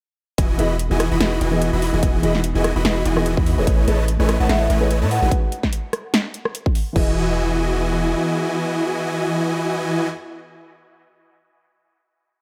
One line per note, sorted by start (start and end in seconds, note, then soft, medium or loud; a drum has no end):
0.38 0.57 E1 loud
0.38 0.57 E3 medium
0.38 3.64 E3 medium
0.38 3.64 B3 medium
0.38 3.64 D#4 medium
0.38 0.57 E4 medium
0.38 0.57 F#4 medium
0.38 3.64 G#4 medium
0.38 0.57 D#5 medium
0.38 0.57 G#5 loud
0.38 kick loud
0.38 closed hi-hat medium
0.58 0.89 E1 loud
0.58 0.65 E3 medium
0.58 0.76 E3 medium
0.58 0.66 B3 medium
0.58 0.76 E4 medium
0.58 0.76 F#4 medium
0.58 0.66 G#4 medium
0.58 0.76 D#5 medium
0.58 0.66 D#5 loud
0.58 0.76 B5 medium
0.58 closed hi-hat medium
0.79 closed hi-hat medium
0.90 1.09 E1 loud
0.90 0.96 E3 medium
0.90 1.09 E3 medium
0.90 0.96 B3 medium
0.90 1.09 E4 medium
0.90 1.09 F#4 medium
0.90 0.97 G#4 medium
0.90 1.09 D#5 medium
0.90 0.97 D#5 medium
0.90 1.09 G#5 loud
1.00 cross-stick medium
1.00 closed hi-hat medium
1.11 1.19 E1 medium
1.11 1.18 E3 medium
1.11 1.18 E4 medium
1.11 1.18 F#4 medium
1.11 1.18 D#5 medium
1.11 1.18 B5 loud
1.19 1.39 E1 loud
1.19 1.27 E3 medium
1.19 1.39 E3 medium
1.19 1.27 B3 medium
1.19 1.39 E4 medium
1.19 1.39 F#4 medium
1.19 1.28 G#4 medium
1.19 1.39 D#5 medium
1.19 1.28 D#5 medium
1.19 1.39 B5 medium
1.19 snare loud
1.19 closed hi-hat medium
1.41 1.71 E1 loud
1.41 1.70 E3 medium
1.41 1.70 E4 medium
1.41 1.70 F#4 medium
1.41 1.70 D#5 medium
1.41 1.70 G#5 medium
1.41 closed hi-hat medium
1.51 1.57 E3 loud
1.51 1.58 B3 medium
1.51 1.58 G#4 medium
1.51 1.58 D#5 loud
1.62 closed hi-hat medium
1.73 1.91 E1 medium
1.73 1.91 E3 loud
1.73 1.91 E4 medium
1.73 1.91 F#4 medium
1.73 1.91 D#5 medium
1.73 1.91 B5 loud
1.82 open hi-hat medium
1.93 2.01 E1 loud
1.93 2.21 E3 medium
1.93 2.01 E3 medium
1.93 2.21 B3 medium
1.93 2.01 E4 medium
1.93 2.01 F#4 medium
1.93 2.21 G#4 medium
1.93 2.01 D#5 medium
1.93 2.22 D#5 medium
1.93 2.01 G#5 medium
2.03 2.21 E1 loud
2.03 2.21 E3 loud
2.03 2.21 E4 medium
2.03 2.21 F#4 medium
2.03 2.21 D#5 medium
2.03 2.21 G#5 loud
2.03 kick loud
2.03 closed hi-hat medium
2.22 2.53 E1 loud
2.22 2.30 E3 medium
2.22 2.40 E3 medium
2.22 2.30 B3 medium
2.22 2.40 E4 medium
2.22 2.40 F#4 medium
2.22 2.30 G#4 medium
2.22 2.40 D#5 medium
2.22 2.31 D#5 loud
2.22 2.40 B5 medium
2.22 closed hi-hat medium
2.35 snare soft
2.44 closed hi-hat medium
2.54 2.74 E1 loud
2.54 2.60 E3 medium
2.54 2.73 E3 medium
2.54 2.61 B3 medium
2.54 2.73 E4 medium
2.54 2.73 F#4 medium
2.54 2.61 G#4 medium
2.54 2.73 D#5 medium
2.54 2.61 D#5 medium
2.54 2.73 G#5 medium
2.64 cross-stick medium
2.64 closed hi-hat medium
2.76 2.83 E1 loud
2.76 2.83 E3 medium
2.76 2.83 E4 medium
2.76 2.83 F#4 medium
2.76 2.83 D#5 medium
2.76 2.83 B5 loud
2.84 3.04 E1 loud
2.84 2.91 E3 medium
2.84 3.03 E3 medium
2.84 2.92 B3 medium
2.84 3.03 E4 medium
2.84 3.03 F#4 medium
2.84 2.92 G#4 medium
2.84 3.03 D#5 medium
2.84 2.92 D#5 medium
2.84 3.03 B5 medium
2.84 snare loud
2.84 closed hi-hat medium
3.06 3.39 E1 loud
3.06 3.35 E3 medium
3.06 3.35 E4 medium
3.06 3.35 F#4 medium
3.06 3.35 D#5 medium
3.06 3.35 G#5 medium
3.06 closed hi-hat medium
3.16 3.22 E3 loud
3.16 3.22 B3 medium
3.16 3.23 G#4 medium
3.16 3.23 D#5 loud
3.16 cross-stick medium
3.26 closed hi-hat medium
3.37 3.56 E2 loud
3.37 3.55 E3 loud
3.37 3.55 E4 medium
3.37 3.55 F#4 medium
3.37 3.55 D#5 medium
3.37 3.55 B5 loud
3.37 kick loud
3.46 open hi-hat medium
3.57 3.65 E1 loud
3.57 3.65 E3 medium
3.57 3.85 A3 medium
3.57 3.65 E4 medium
3.57 3.65 F#4 medium
3.57 3.85 G#4 medium
3.57 3.85 B4 medium
3.57 3.86 C#5 medium
3.57 3.65 D#5 medium
3.57 3.86 D#5 medium
3.57 3.65 G#5 loud
3.67 3.86 A1 loud
3.67 5.30 G#3 medium
3.67 3.86 A3 medium
3.67 5.30 A3 medium
3.67 5.30 C#4 medium
3.67 3.86 E4 medium
3.67 3.86 B4 medium
3.67 3.86 C#5 medium
3.67 3.86 D#5 medium
3.67 3.86 G#5 loud
3.67 kick loud
3.67 closed hi-hat medium
3.87 4.17 A1 loud
3.87 3.94 A3 medium
3.87 4.04 A3 medium
3.87 4.04 E4 medium
3.87 3.94 G#4 medium
3.87 3.95 B4 medium
3.87 4.04 B4 medium
3.87 4.04 C#5 medium
3.87 3.95 C#5 medium
3.87 4.04 D#5 medium
3.87 3.95 D#5 loud
3.87 4.04 A5 medium
3.87 closed hi-hat medium
4.08 closed hi-hat medium
4.19 4.38 A1 loud
4.19 4.25 A3 medium
4.19 4.37 A3 medium
4.19 4.37 E4 medium
4.19 4.25 G#4 medium
4.19 4.25 B4 medium
4.19 4.37 B4 medium
4.19 4.37 C#5 medium
4.19 4.25 C#5 medium
4.19 4.37 D#5 medium
4.19 4.26 D#5 medium
4.19 4.37 G#5 loud
4.29 cross-stick medium
4.29 closed hi-hat medium
4.40 4.48 A1 loud
4.40 4.47 A3 medium
4.40 4.47 E4 medium
4.40 4.47 B4 medium
4.40 4.47 C#5 medium
4.40 4.47 D#5 medium
4.40 4.47 F#5 loud
4.40 4.47 A5 loud
4.48 4.68 A1 loud
4.48 4.56 A3 medium
4.48 4.68 A3 medium
4.48 4.68 E4 medium
4.48 4.56 G#4 medium
4.48 4.56 B4 medium
4.48 4.68 B4 medium
4.48 4.68 C#5 medium
4.48 4.57 C#5 medium
4.48 4.68 D#5 medium
4.48 4.57 D#5 medium
4.48 4.67 E5 medium
4.48 4.68 A5 medium
4.48 snare loud
4.48 closed hi-hat medium
4.70 5.03 A1 loud
4.70 4.99 A3 medium
4.70 4.99 E4 medium
4.70 4.99 B4 medium
4.70 4.99 C#5 medium
4.70 4.99 D#5 medium
4.70 4.99 G#5 medium
4.70 closed hi-hat medium
4.80 4.86 A3 loud
4.80 4.87 G#4 medium
4.80 4.87 B4 loud
4.80 4.87 C#5 loud
4.80 4.87 D#5 loud
4.91 closed hi-hat medium
5.02 5.20 A2 loud
5.02 5.20 A3 loud
5.02 5.20 E4 medium
5.02 5.20 B4 medium
5.02 5.20 C#5 medium
5.02 5.20 D#5 medium
5.02 5.20 A5 loud
5.11 5.29 F#5 loud
5.11 open hi-hat medium
5.21 5.30 A1 loud
5.21 5.49 G#3 medium
5.21 5.29 A3 medium
5.21 5.50 D#4 medium
5.21 5.29 E4 medium
5.21 5.50 F#4 medium
5.21 5.29 B4 medium
5.21 5.50 B4 medium
5.21 5.29 C#5 medium
5.21 5.29 D#5 medium
5.21 5.29 G#5 loud
5.31 kick loud
5.31 closed hi-hat medium
5.52 closed hi-hat medium
5.63 kick medium
5.63 snare soft
5.73 closed hi-hat medium
5.93 cross-stick medium
5.93 closed hi-hat medium
6.14 snare loud
6.14 closed hi-hat medium
6.34 closed hi-hat medium
6.45 cross-stick medium
6.55 closed hi-hat medium
6.66 kick loud
6.75 open hi-hat medium
6.93 8.15 E1 loud
6.93 10.06 E3 medium
6.93 10.09 E3 medium
6.93 10.09 B3 medium
6.93 10.08 E4 medium
6.93 10.09 E4 medium
6.93 10.09 F#4 medium
6.93 10.09 G#4 medium
6.93 10.10 G#4 medium
6.93 10.09 D#5 medium
6.93 10.09 G#5 loud
6.93 kick loud
6.93 crash medium
6.99 10.12 D#5 medium